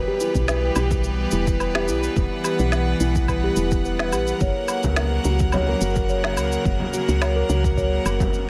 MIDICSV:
0, 0, Header, 1, 6, 480
1, 0, Start_track
1, 0, Tempo, 560748
1, 1856, Time_signature, 4, 2, 24, 8
1, 7272, End_track
2, 0, Start_track
2, 0, Title_t, "Steel tongue drum"
2, 0, Program_c, 0, 114
2, 66, Note_on_c, 0, 67, 103
2, 171, Note_off_c, 0, 67, 0
2, 179, Note_on_c, 0, 64, 76
2, 299, Note_off_c, 0, 64, 0
2, 416, Note_on_c, 0, 71, 81
2, 644, Note_off_c, 0, 71, 0
2, 658, Note_on_c, 0, 67, 74
2, 1125, Note_off_c, 0, 67, 0
2, 1137, Note_on_c, 0, 64, 76
2, 1365, Note_off_c, 0, 64, 0
2, 1376, Note_on_c, 0, 71, 78
2, 1449, Note_off_c, 0, 71, 0
2, 1500, Note_on_c, 0, 67, 96
2, 1608, Note_off_c, 0, 67, 0
2, 1617, Note_on_c, 0, 64, 72
2, 1738, Note_off_c, 0, 64, 0
2, 1855, Note_on_c, 0, 71, 83
2, 2084, Note_off_c, 0, 71, 0
2, 2095, Note_on_c, 0, 67, 71
2, 2564, Note_off_c, 0, 67, 0
2, 2575, Note_on_c, 0, 64, 73
2, 2804, Note_off_c, 0, 64, 0
2, 2818, Note_on_c, 0, 71, 75
2, 2890, Note_off_c, 0, 71, 0
2, 2945, Note_on_c, 0, 67, 98
2, 3050, Note_off_c, 0, 67, 0
2, 3056, Note_on_c, 0, 64, 76
2, 3178, Note_off_c, 0, 64, 0
2, 3298, Note_on_c, 0, 71, 81
2, 3525, Note_off_c, 0, 71, 0
2, 3537, Note_on_c, 0, 67, 77
2, 3776, Note_off_c, 0, 67, 0
2, 3776, Note_on_c, 0, 73, 78
2, 4005, Note_off_c, 0, 73, 0
2, 4016, Note_on_c, 0, 70, 69
2, 4485, Note_off_c, 0, 70, 0
2, 4496, Note_on_c, 0, 66, 79
2, 4725, Note_off_c, 0, 66, 0
2, 4738, Note_on_c, 0, 73, 79
2, 4810, Note_off_c, 0, 73, 0
2, 4867, Note_on_c, 0, 70, 102
2, 4971, Note_off_c, 0, 70, 0
2, 4978, Note_on_c, 0, 66, 79
2, 5099, Note_off_c, 0, 66, 0
2, 5217, Note_on_c, 0, 73, 77
2, 5445, Note_off_c, 0, 73, 0
2, 5456, Note_on_c, 0, 70, 74
2, 5924, Note_off_c, 0, 70, 0
2, 5938, Note_on_c, 0, 66, 75
2, 6165, Note_off_c, 0, 66, 0
2, 6175, Note_on_c, 0, 73, 77
2, 6249, Note_off_c, 0, 73, 0
2, 6302, Note_on_c, 0, 70, 100
2, 6409, Note_off_c, 0, 70, 0
2, 6417, Note_on_c, 0, 66, 77
2, 6538, Note_off_c, 0, 66, 0
2, 6656, Note_on_c, 0, 73, 79
2, 6885, Note_off_c, 0, 73, 0
2, 6894, Note_on_c, 0, 70, 79
2, 7272, Note_off_c, 0, 70, 0
2, 7272, End_track
3, 0, Start_track
3, 0, Title_t, "String section"
3, 0, Program_c, 1, 48
3, 0, Note_on_c, 1, 52, 80
3, 0, Note_on_c, 1, 55, 72
3, 0, Note_on_c, 1, 59, 68
3, 0, Note_on_c, 1, 67, 74
3, 0, Note_on_c, 1, 71, 86
3, 1835, Note_off_c, 1, 67, 0
3, 1855, Note_on_c, 1, 78, 72
3, 3739, Note_off_c, 1, 59, 0
3, 3740, Note_off_c, 1, 55, 0
3, 3740, Note_off_c, 1, 71, 0
3, 3741, Note_off_c, 1, 52, 0
3, 3768, Note_on_c, 1, 58, 73
3, 3769, Note_on_c, 1, 54, 70
3, 3770, Note_on_c, 1, 49, 74
3, 3771, Note_on_c, 1, 70, 80
3, 7272, Note_off_c, 1, 49, 0
3, 7272, Note_off_c, 1, 54, 0
3, 7272, Note_off_c, 1, 58, 0
3, 7272, Note_off_c, 1, 70, 0
3, 7272, Note_off_c, 1, 78, 0
3, 7272, End_track
4, 0, Start_track
4, 0, Title_t, "FM bass"
4, 0, Program_c, 2, 39
4, 300, Note_on_c, 2, 35, 105
4, 601, Note_off_c, 2, 35, 0
4, 650, Note_on_c, 2, 35, 108
4, 1080, Note_off_c, 2, 35, 0
4, 1134, Note_on_c, 2, 28, 78
4, 1613, Note_on_c, 2, 35, 90
4, 1626, Note_off_c, 2, 28, 0
4, 1789, Note_off_c, 2, 35, 0
4, 1852, Note_on_c, 2, 28, 104
4, 1944, Note_off_c, 2, 28, 0
4, 2220, Note_on_c, 2, 35, 99
4, 2521, Note_off_c, 2, 35, 0
4, 2571, Note_on_c, 2, 35, 104
4, 3001, Note_off_c, 2, 35, 0
4, 3052, Note_on_c, 2, 28, 80
4, 3534, Note_on_c, 2, 34, 89
4, 3547, Note_off_c, 2, 28, 0
4, 3709, Note_off_c, 2, 34, 0
4, 3774, Note_on_c, 2, 30, 104
4, 3865, Note_off_c, 2, 30, 0
4, 4144, Note_on_c, 2, 37, 102
4, 4443, Note_off_c, 2, 37, 0
4, 4494, Note_on_c, 2, 37, 106
4, 4922, Note_off_c, 2, 37, 0
4, 4974, Note_on_c, 2, 30, 86
4, 5451, Note_on_c, 2, 37, 92
4, 5464, Note_off_c, 2, 30, 0
4, 5627, Note_off_c, 2, 37, 0
4, 5695, Note_on_c, 2, 30, 101
4, 5786, Note_off_c, 2, 30, 0
4, 6064, Note_on_c, 2, 37, 101
4, 6363, Note_off_c, 2, 37, 0
4, 6415, Note_on_c, 2, 37, 108
4, 6842, Note_off_c, 2, 37, 0
4, 6894, Note_on_c, 2, 30, 84
4, 7272, Note_off_c, 2, 30, 0
4, 7272, End_track
5, 0, Start_track
5, 0, Title_t, "Frame drum"
5, 4143, Note_on_c, 9, 64, 85
5, 4229, Note_off_c, 9, 64, 0
5, 4740, Note_on_c, 9, 64, 82
5, 4826, Note_off_c, 9, 64, 0
5, 5820, Note_on_c, 9, 64, 72
5, 5906, Note_off_c, 9, 64, 0
5, 7023, Note_on_c, 9, 64, 86
5, 7109, Note_off_c, 9, 64, 0
5, 7272, End_track
6, 0, Start_track
6, 0, Title_t, "Drums"
6, 173, Note_on_c, 9, 69, 74
6, 259, Note_off_c, 9, 69, 0
6, 299, Note_on_c, 9, 69, 49
6, 301, Note_on_c, 9, 36, 62
6, 385, Note_off_c, 9, 69, 0
6, 386, Note_off_c, 9, 36, 0
6, 413, Note_on_c, 9, 38, 73
6, 413, Note_on_c, 9, 69, 32
6, 498, Note_off_c, 9, 38, 0
6, 498, Note_off_c, 9, 69, 0
6, 647, Note_on_c, 9, 69, 73
6, 647, Note_on_c, 9, 77, 72
6, 733, Note_off_c, 9, 69, 0
6, 733, Note_off_c, 9, 77, 0
6, 778, Note_on_c, 9, 69, 47
6, 781, Note_on_c, 9, 36, 104
6, 864, Note_off_c, 9, 69, 0
6, 867, Note_off_c, 9, 36, 0
6, 888, Note_on_c, 9, 69, 37
6, 973, Note_off_c, 9, 69, 0
6, 1124, Note_on_c, 9, 69, 79
6, 1209, Note_off_c, 9, 69, 0
6, 1259, Note_on_c, 9, 69, 47
6, 1261, Note_on_c, 9, 36, 110
6, 1344, Note_off_c, 9, 69, 0
6, 1347, Note_off_c, 9, 36, 0
6, 1371, Note_on_c, 9, 69, 34
6, 1371, Note_on_c, 9, 77, 72
6, 1457, Note_off_c, 9, 69, 0
6, 1457, Note_off_c, 9, 77, 0
6, 1498, Note_on_c, 9, 38, 84
6, 1583, Note_off_c, 9, 38, 0
6, 1611, Note_on_c, 9, 69, 80
6, 1697, Note_off_c, 9, 69, 0
6, 1740, Note_on_c, 9, 69, 49
6, 1826, Note_off_c, 9, 69, 0
6, 1852, Note_on_c, 9, 69, 31
6, 1853, Note_on_c, 9, 36, 117
6, 1937, Note_off_c, 9, 69, 0
6, 1938, Note_off_c, 9, 36, 0
6, 2092, Note_on_c, 9, 69, 76
6, 2092, Note_on_c, 9, 77, 74
6, 2177, Note_off_c, 9, 69, 0
6, 2177, Note_off_c, 9, 77, 0
6, 2219, Note_on_c, 9, 69, 46
6, 2304, Note_off_c, 9, 69, 0
6, 2329, Note_on_c, 9, 38, 71
6, 2329, Note_on_c, 9, 69, 32
6, 2414, Note_off_c, 9, 38, 0
6, 2414, Note_off_c, 9, 69, 0
6, 2570, Note_on_c, 9, 69, 75
6, 2656, Note_off_c, 9, 69, 0
6, 2699, Note_on_c, 9, 69, 45
6, 2701, Note_on_c, 9, 36, 101
6, 2785, Note_off_c, 9, 69, 0
6, 2787, Note_off_c, 9, 36, 0
6, 2811, Note_on_c, 9, 69, 33
6, 2811, Note_on_c, 9, 77, 72
6, 2813, Note_on_c, 9, 36, 61
6, 2896, Note_off_c, 9, 69, 0
6, 2896, Note_off_c, 9, 77, 0
6, 2898, Note_off_c, 9, 36, 0
6, 3050, Note_on_c, 9, 69, 77
6, 3136, Note_off_c, 9, 69, 0
6, 3178, Note_on_c, 9, 69, 45
6, 3182, Note_on_c, 9, 36, 112
6, 3264, Note_off_c, 9, 69, 0
6, 3268, Note_off_c, 9, 36, 0
6, 3294, Note_on_c, 9, 69, 34
6, 3379, Note_off_c, 9, 69, 0
6, 3418, Note_on_c, 9, 38, 81
6, 3504, Note_off_c, 9, 38, 0
6, 3531, Note_on_c, 9, 69, 76
6, 3531, Note_on_c, 9, 77, 77
6, 3617, Note_off_c, 9, 69, 0
6, 3617, Note_off_c, 9, 77, 0
6, 3657, Note_on_c, 9, 69, 47
6, 3743, Note_off_c, 9, 69, 0
6, 3769, Note_on_c, 9, 69, 34
6, 3774, Note_on_c, 9, 36, 118
6, 3854, Note_off_c, 9, 69, 0
6, 3860, Note_off_c, 9, 36, 0
6, 4008, Note_on_c, 9, 69, 77
6, 4008, Note_on_c, 9, 77, 75
6, 4093, Note_off_c, 9, 69, 0
6, 4093, Note_off_c, 9, 77, 0
6, 4135, Note_on_c, 9, 69, 44
6, 4144, Note_on_c, 9, 36, 57
6, 4221, Note_off_c, 9, 69, 0
6, 4229, Note_off_c, 9, 36, 0
6, 4249, Note_on_c, 9, 38, 68
6, 4249, Note_on_c, 9, 69, 30
6, 4335, Note_off_c, 9, 38, 0
6, 4335, Note_off_c, 9, 69, 0
6, 4489, Note_on_c, 9, 69, 72
6, 4575, Note_off_c, 9, 69, 0
6, 4616, Note_on_c, 9, 69, 46
6, 4625, Note_on_c, 9, 36, 108
6, 4701, Note_off_c, 9, 69, 0
6, 4710, Note_off_c, 9, 36, 0
6, 4728, Note_on_c, 9, 69, 33
6, 4728, Note_on_c, 9, 77, 76
6, 4813, Note_off_c, 9, 69, 0
6, 4813, Note_off_c, 9, 77, 0
6, 4974, Note_on_c, 9, 69, 78
6, 5059, Note_off_c, 9, 69, 0
6, 5099, Note_on_c, 9, 69, 45
6, 5104, Note_on_c, 9, 36, 99
6, 5185, Note_off_c, 9, 69, 0
6, 5190, Note_off_c, 9, 36, 0
6, 5215, Note_on_c, 9, 69, 32
6, 5300, Note_off_c, 9, 69, 0
6, 5340, Note_on_c, 9, 38, 78
6, 5426, Note_off_c, 9, 38, 0
6, 5454, Note_on_c, 9, 69, 78
6, 5454, Note_on_c, 9, 77, 78
6, 5539, Note_off_c, 9, 77, 0
6, 5540, Note_off_c, 9, 69, 0
6, 5582, Note_on_c, 9, 69, 45
6, 5668, Note_off_c, 9, 69, 0
6, 5696, Note_on_c, 9, 36, 121
6, 5696, Note_on_c, 9, 69, 31
6, 5782, Note_off_c, 9, 36, 0
6, 5782, Note_off_c, 9, 69, 0
6, 5936, Note_on_c, 9, 69, 67
6, 6021, Note_off_c, 9, 69, 0
6, 6064, Note_on_c, 9, 69, 41
6, 6150, Note_off_c, 9, 69, 0
6, 6177, Note_on_c, 9, 38, 70
6, 6177, Note_on_c, 9, 69, 32
6, 6177, Note_on_c, 9, 77, 78
6, 6263, Note_off_c, 9, 38, 0
6, 6263, Note_off_c, 9, 69, 0
6, 6263, Note_off_c, 9, 77, 0
6, 6415, Note_on_c, 9, 69, 66
6, 6501, Note_off_c, 9, 69, 0
6, 6543, Note_on_c, 9, 36, 104
6, 6548, Note_on_c, 9, 69, 42
6, 6628, Note_off_c, 9, 36, 0
6, 6634, Note_off_c, 9, 69, 0
6, 6654, Note_on_c, 9, 36, 59
6, 6658, Note_on_c, 9, 69, 32
6, 6740, Note_off_c, 9, 36, 0
6, 6744, Note_off_c, 9, 69, 0
6, 6897, Note_on_c, 9, 69, 71
6, 6897, Note_on_c, 9, 77, 75
6, 6983, Note_off_c, 9, 69, 0
6, 6983, Note_off_c, 9, 77, 0
6, 7021, Note_on_c, 9, 36, 103
6, 7024, Note_on_c, 9, 69, 41
6, 7107, Note_off_c, 9, 36, 0
6, 7110, Note_off_c, 9, 69, 0
6, 7137, Note_on_c, 9, 69, 31
6, 7223, Note_off_c, 9, 69, 0
6, 7272, End_track
0, 0, End_of_file